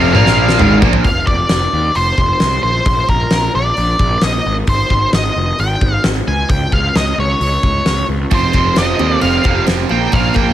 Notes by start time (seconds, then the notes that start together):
Already playing: F1 F2 C3 F3 F5
0.13 A#1 A#2 F3 A#3 F5, high tom
0.26 snare
0.49 snare
0.59 G#1 G#2 D#3 G#3, mid tom
0.81 A#1 A#2 F3 A#3, kick
0.93 floor tom
1.04 F1 F5, kick, open hi-hat
1.27 F1 D5, kick
1.49 F1, snare, open hi-hat
1.73 D#2
1.95 F1 C5, open hi-hat
2.18 F1, kick
2.40 C2, snare, open hi-hat
2.63 A#1 C5
2.86 A#1, kick, open hi-hat
3.09 A#1 A#4, kick
3.31 A#1, snare, open hi-hat
3.55 A#1 D5
3.77 A#1, open hi-hat
3.99 A#1, kick
4.22 A#1 D#5, snare, open hi-hat
4.46 G#1
4.67 G#1 C5, kick, open hi-hat
4.90 G#1, kick
5.13 G#1 D#5, snare, open hi-hat
5.36 F1
5.59 G#1 G5, open hi-hat
5.81 G#1, kick
6.04 G#1, snare, open hi-hat
6.27 C#2 G#5
6.49 C#2 G5, kick, open hi-hat
6.72 C#2 F5, kick
6.95 C#2 D#5, snare, open hi-hat
7.18 C#2 C#5
7.40 C#2, open hi-hat
7.63 C#2, kick
7.86 C#2, snare, open hi-hat
8.08 C#2
8.31 F1 F2 C3 F3 C5, kick, open hi-hat
8.53 F1 F2 C3 F3 C4, kick
8.76 F1 F2 C3 F3 F4 D#5, snare, open hi-hat
8.99 D#2 F2 C3 F3 G3
9.21 F1 F2 C3 F3 C4 F5, open hi-hat
9.44 F1 F2 C3 F3 G3, kick
9.66 F1 F2 C3 F3 C4, snare, open hi-hat
9.89 A#1 A#2 F3 A#3 G5
10.11 A#1 A#2 F3 A#3 F5, kick, open hi-hat
10.34 A#1 A#2 F3 A#3 G5, kick